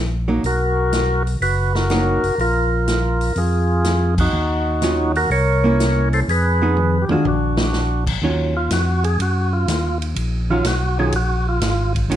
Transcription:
Already playing: tonewheel organ A#1
0.28 hollow-body jazz guitar F#3 A#3 D#4
0.43 tonewheel organ B1 F#4 A#4, open hi-hat
0.93 snare, closed hi-hat
1.27 open hi-hat
1.41 tonewheel organ F#1 F#4 B4, open hi-hat
1.75 tonewheel organ F#4 A#4, snare
1.90 hollow-body jazz guitar F#3 A#3 D#4, snare, closed hi-hat
2.23 tonewheel organ F#1, open hi-hat
2.38 tonewheel organ A#1 F4 A#4, open hi-hat
2.88 snare, closed hi-hat
3.21 open hi-hat
3.36 tonewheel organ F2 F4 G#4, open hi-hat
3.84 snare, closed hi-hat
4.18 tonewheel organ D#4 F#4, kick, crash
4.33 tonewheel organ D#2
4.82 hollow-body jazz guitar D#3 F#3 C#4 F4, snare, closed hi-hat
5.15 tonewheel organ F#4 A#4, open hi-hat
5.29 tonewheel organ C2 A#4 C#5, open hi-hat
5.64 hollow-body jazz guitar A#3 C#4 E4
5.80 snare, closed hi-hat
6.13 tonewheel organ A4 C5, open hi-hat
6.28 tonewheel organ F2 G#4 B4, open hi-hat
6.62 hollow-body jazz guitar F3 B3 D#4 G#4
6.77 mid tom
7.02 tonewheel organ G4
7.09 tonewheel organ F2 F4 G#4, hollow-body jazz guitar G#3 D4 F#4, mid tom
7.24 tonewheel organ A#1 D4, floor tom
7.28 tonewheel organ F#4
7.57 snare
7.73 snare
8.07 kick, crash
8.22 tonewheel organ D#2, hollow-body jazz guitar D#3 F#3 C#4 F4
8.57 tonewheel organ F4
8.70 tonewheel organ F2 F#4, snare, hi-hat pedal, ride
9.04 tonewheel organ G#4, ride
9.19 tonewheel organ F#2 F#4, ride
9.53 tonewheel organ F4
9.67 tonewheel organ D#2, snare, hi-hat pedal, ride
10.02 ride
10.16 tonewheel organ A#1, ride
10.50 hollow-body jazz guitar D#3 F#3 C#4 F4, tonewheel organ F4
10.64 tonewheel organ B1 F#4, snare, hi-hat pedal, ride
10.99 hollow-body jazz guitar D#3 F#3 C#4 F4, tonewheel organ G#4
11.12 tonewheel organ A#1 F#4, ride
11.49 tonewheel organ F4
11.61 tonewheel organ G#1, snare, hi-hat pedal, ride
11.95 kick, ride
12.09 tonewheel organ A#1, hollow-body jazz guitar D#3 F#3 C#4 F4, ride

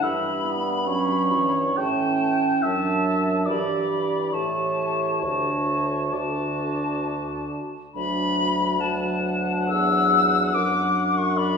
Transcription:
0.02 bassoon G2, french horn G3, clarinet E4, oboe E5, flute B5
0.44 clarinet B3
0.86 french horn F#3, clarinet C#4, oboe C#5
1.31 french horn E3
1.77 bassoon A2, french horn E3, clarinet C#4, oboe G5, flute A5
2.63 bassoon F#2, french horn F#3, clarinet D4, oboe E5, flute A5
3.46 bassoon G2, french horn E3, clarinet G4, oboe D5, flute B5
4.32 bassoon A2, french horn E3, clarinet G4, oboe C#5, flute A5
5.22 bassoon D2, french horn D3, clarinet F#4, oboe C#5, flute A5
6.13 french horn D3, clarinet F#4, oboe D5, flute A5
7.94 bassoon D2, french horn F#3, clarinet D4, flute B5
8.79 french horn F#3, clarinet D4, oboe F#5, flute A5
9.69 bassoon E2, flute E6
10.53 bassoon F#2, french horn F#3, clarinet D4, flute D6
11.18 flute C#6
11.37 oboe D5, flute B5

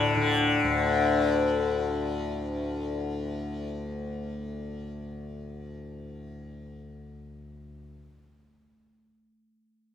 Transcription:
Already playing: tanpura D2 A2 D3, sitar D4
0.16 tanpura D3
0.64 tanpura D2

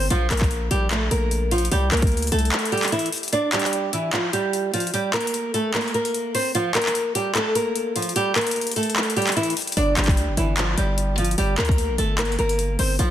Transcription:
0.10 808-style bass A#1, nylon-string guitar F3 F4, closed hi-hat
0.31 808-style bass A#1, nylon-string guitar A#3 A#4, clap, closed hi-hat
0.37 clap, closed hi-hat
0.41 kick, closed hi-hat
0.51 closed hi-hat
0.71 808-style bass A#1, nylon-string guitar G3 G4, closed hi-hat
0.91 nylon-string guitar A3 A4, clap, closed hi-hat
1.11 808-style bass A#1, nylon-string guitar A#3 A#4, closed hi-hat
1.31 closed hi-hat
1.51 nylon-string guitar F3 F4, closed hi-hat
1.58 closed hi-hat
1.65 closed hi-hat
1.72 808-style bass C2, nylon-string guitar G3 G4, closed hi-hat
1.92 808-style bass C2, nylon-string guitar A#3 A#4, clap, closed hi-hat
1.97 closed hi-hat
2.02 kick, closed hi-hat
2.07 closed hi-hat
2.12 808-style bass D2, closed hi-hat
2.17 closed hi-hat
2.22 closed hi-hat
2.27 closed hi-hat
2.32 808-style bass C2, nylon-string guitar A3 A4, closed hi-hat
2.39 closed hi-hat
2.45 closed hi-hat
2.52 clap, closed hi-hat
2.59 closed hi-hat
2.65 closed hi-hat
2.72 nylon-string guitar G3 G4, closed hi-hat
2.78 closed hi-hat
2.83 clap, closed hi-hat
2.88 closed hi-hat
2.92 nylon-string guitar E3 E4, closed hi-hat
2.99 closed hi-hat
3.06 closed hi-hat
3.12 closed hi-hat, open hi-hat
3.18 closed hi-hat
3.23 closed hi-hat
3.28 closed hi-hat
3.33 nylon-string guitar D4 D5, closed hi-hat
3.53 nylon-string guitar G3 G4, clap, closed hi-hat
3.59 clap, closed hi-hat
3.66 closed hi-hat
3.73 closed hi-hat
3.93 nylon-string guitar E3 E4, closed hi-hat
4.13 nylon-string guitar F3 F4, clap, closed hi-hat
4.33 nylon-string guitar G3 G4, closed hi-hat
4.53 closed hi-hat
4.74 nylon-string guitar F3 F4, closed hi-hat
4.80 closed hi-hat
4.87 closed hi-hat
4.94 nylon-string guitar G3 G4, closed hi-hat
5.14 nylon-string guitar A#3 A#4, clap, closed hi-hat
5.21 closed hi-hat
5.27 closed hi-hat
5.34 closed hi-hat
5.54 nylon-string guitar A3 A4, closed hi-hat
5.74 nylon-string guitar A#3 A#4, clap, closed hi-hat
5.81 closed hi-hat
5.88 closed hi-hat
5.94 nylon-string guitar A#3 A#4, closed hi-hat
6.05 closed hi-hat
6.14 closed hi-hat
6.35 nylon-string guitar C4 C5, open hi-hat
6.55 nylon-string guitar F3 F4, closed hi-hat
6.75 nylon-string guitar A#3 A#4, clap, closed hi-hat
6.82 clap, closed hi-hat
6.88 closed hi-hat
6.95 closed hi-hat
7.15 nylon-string guitar G3 G4, closed hi-hat
7.35 nylon-string guitar A3 A4, clap, closed hi-hat
7.55 nylon-string guitar A#3 A#4, closed hi-hat
7.76 closed hi-hat
7.96 nylon-string guitar F3 F4, closed hi-hat
8.02 closed hi-hat
8.09 closed hi-hat
8.16 nylon-string guitar G3 G4, closed hi-hat
8.36 nylon-string guitar A#3 A#4, clap, closed hi-hat
8.41 closed hi-hat
8.47 closed hi-hat
8.51 closed hi-hat
8.56 closed hi-hat
8.61 closed hi-hat
8.67 closed hi-hat
8.71 closed hi-hat
8.76 nylon-string guitar A3 A4, closed hi-hat
8.83 closed hi-hat
8.90 closed hi-hat
8.96 clap
9.03 closed hi-hat
9.10 closed hi-hat
9.16 nylon-string guitar G3 G4, closed hi-hat
9.22 closed hi-hat
9.27 clap, closed hi-hat
9.32 closed hi-hat
9.37 nylon-string guitar E3 E4, closed hi-hat
9.43 closed hi-hat
9.50 closed hi-hat
9.57 closed hi-hat, open hi-hat
9.62 closed hi-hat
9.67 closed hi-hat
9.72 closed hi-hat
9.77 808-style bass G1, nylon-string guitar D4 D5, closed hi-hat
9.97 808-style bass G1, nylon-string guitar G3 G4, clap, closed hi-hat
10.04 clap, closed hi-hat
10.08 kick, closed hi-hat
10.17 808-style bass D2, closed hi-hat
10.28 808-style bass G1
10.37 808-style bass G1, nylon-string guitar E3 E4, closed hi-hat
10.57 nylon-string guitar F3 F4, clap, closed hi-hat
10.77 808-style bass G1, nylon-string guitar G3 G4, closed hi-hat
10.98 closed hi-hat
11.18 nylon-string guitar F3 F4, closed hi-hat
11.25 closed hi-hat
11.31 closed hi-hat
11.38 808-style bass G1, nylon-string guitar G3 G4, closed hi-hat
11.58 808-style bass D2, nylon-string guitar A#3 A#4, clap, closed hi-hat
11.65 closed hi-hat
11.69 kick, closed hi-hat
11.78 closed hi-hat
11.89 808-style bass A#1
11.98 808-style bass G1, nylon-string guitar A3 A4, closed hi-hat
12.18 nylon-string guitar A#3 A#4, clap, closed hi-hat
12.25 closed hi-hat
12.32 closed hi-hat
12.39 808-style bass G1, nylon-string guitar A#3 A#4, closed hi-hat
12.49 closed hi-hat
12.59 closed hi-hat
12.79 808-style bass G1, nylon-string guitar C4 C5, open hi-hat
12.99 808-style bass A#1, nylon-string guitar F3 F4, closed hi-hat

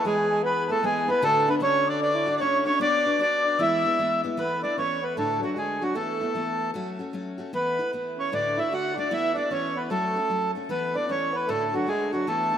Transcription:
0.04 steel-string acoustic guitar E3 G#3 B3 E4, tenor saxophone G#3, accordion G#4, tin whistle G#5
0.18 tenor saxophone G#3
0.30 tenor saxophone G#3
0.43 tenor saxophone B3, accordion B4, tin whistle B5
0.68 steel-string acoustic guitar G#3 B3 E4, tenor saxophone A3, accordion A4, tin whistle A5
0.82 steel-string acoustic guitar E3 G#3 B3 E4, tenor saxophone G#3, accordion G#4, tin whistle G#5
1.07 steel-string acoustic guitar G#3 B3 E4, tenor saxophone B3, accordion B4, tin whistle B5
1.22 steel-string acoustic guitar D2 A2 D3 A3 D4 F#4, tenor saxophone A3, accordion A4, tin whistle A5
1.47 steel-string acoustic guitar D3 A3 D4 F#4, tenor saxophone B3, accordion B4, tin whistle B5
1.60 steel-string acoustic guitar D3 A3 D4 F#4, tenor saxophone C#4, accordion C#5, tin whistle C#6
1.87 tenor saxophone D4, accordion D5, tin whistle D6
2.01 tenor saxophone D4, accordion D5, tin whistle D6
2.15 tenor saxophone E4
2.26 steel-string acoustic guitar D3 A3 D4 F#4, tenor saxophone D4, tin whistle D6
2.37 steel-string acoustic guitar D3, accordion D5
2.41 steel-string acoustic guitar A3 D4 F#4, tenor saxophone C#4, accordion C#5, tin whistle C#6
2.65 steel-string acoustic guitar D3 A3 D4 F#4, tenor saxophone C#4, accordion C#5, tin whistle C#6
2.80 steel-string acoustic guitar B3 D4 F#4 B4, tenor saxophone D4, accordion D5, tin whistle D6
3.05 steel-string acoustic guitar D4 F#4 B4
3.18 steel-string acoustic guitar B3 D4 F#4 B4, tenor saxophone D4, accordion D5, tin whistle D6
3.46 tenor saxophone D4
3.59 steel-string acoustic guitar E3 G#3 B3 E4, tenor saxophone E4, accordion E5, tin whistle E6
3.84 steel-string acoustic guitar G#3 B3 E4
3.99 steel-string acoustic guitar E3 G#3 B3 E4
4.24 steel-string acoustic guitar G#3 B3 E4
4.37 steel-string acoustic guitar E3 A3 B3 E4, tenor saxophone B3, accordion B4
4.62 steel-string acoustic guitar A3 B3 E4, tenor saxophone D4, accordion D5
4.76 steel-string acoustic guitar E3 A3 B3 E4, tenor saxophone C#4, accordion C#5
5.02 tenor saxophone B3, accordion B4
5.16 steel-string acoustic guitar D2 A2 D3 A3 D4 F#4, tenor saxophone A3, accordion A4
5.40 tenor saxophone F#3, steel-string acoustic guitar A3 D4 F#4, accordion F#4
5.44 steel-string acoustic guitar D3
5.56 steel-string acoustic guitar D3 A3 D4 F#4, tenor saxophone G#3, accordion G#4
5.80 steel-string acoustic guitar D3 A3 D4 F#4, tenor saxophone F#3, accordion F#4
5.94 steel-string acoustic guitar E3 A3 B3 E4, tenor saxophone A3, accordion A4
6.20 steel-string acoustic guitar A3 B3 E4
6.35 steel-string acoustic guitar E3 A3 B3 E4
6.74 steel-string acoustic guitar F#3 A3 C#4 F#4
6.99 steel-string acoustic guitar A3 C#4 F#4
7.13 steel-string acoustic guitar F#3 A3 C#4 F#4
7.38 steel-string acoustic guitar A3 C#4 F#4
7.53 steel-string acoustic guitar E3 A3 B3 E4, tenor saxophone B3, accordion B4
7.79 steel-string acoustic guitar A3 B3 E4
7.93 steel-string acoustic guitar E3 A3 B3 E4
8.19 tenor saxophone C#4, accordion C#5
8.32 steel-string acoustic guitar D2 A2 D3 A3 D4 F#4, tenor saxophone D4, accordion D5
8.57 steel-string acoustic guitar D3 A3 D4 F#4, tenor saxophone E4, accordion E5
8.71 steel-string acoustic guitar D3 A3 D4 F#4, tenor saxophone F#4, accordion F#5
8.95 steel-string acoustic guitar D3 A3 D4 F#4, tenor saxophone D4, accordion D5
9.11 steel-string acoustic guitar E3 A3 B3 E4, tenor saxophone E4, accordion E5
9.34 steel-string acoustic guitar A3 B3 E4, tenor saxophone D4, accordion D5
9.50 steel-string acoustic guitar E3 A3 B3 E4, tenor saxophone C#4, accordion C#5
9.76 tenor saxophone B3, accordion B4
9.90 steel-string acoustic guitar F#3 A3 C#4 F#4, tenor saxophone A3, accordion A4
10.16 steel-string acoustic guitar A3 C#4 F#4
10.30 steel-string acoustic guitar F#3 A3 C#4 F#4
10.55 steel-string acoustic guitar A3 C#4 F#4
10.69 steel-string acoustic guitar E3 A3 B3 E4, tenor saxophone B3, accordion B4
10.94 steel-string acoustic guitar A3 B3 E4, tenor saxophone D4, accordion D5
11.08 steel-string acoustic guitar E3 A3 B3 E4, tenor saxophone C#4, accordion C#5
11.33 tenor saxophone B3, accordion B4
11.47 steel-string acoustic guitar D2 A2 D3 A3 D4 F#4, tenor saxophone A3, accordion A4
11.73 steel-string acoustic guitar D3 A3 D4 F#4, tenor saxophone F#3, accordion F#4
11.87 steel-string acoustic guitar D3 A3 D4 F#4, tenor saxophone G#3, accordion G#4
12.12 steel-string acoustic guitar D3 A3 D4 F#4, tenor saxophone F#3, accordion F#4
12.27 steel-string acoustic guitar E3 A3 B3 E4, tenor saxophone A3, accordion A4
12.52 steel-string acoustic guitar A3 B3 E4

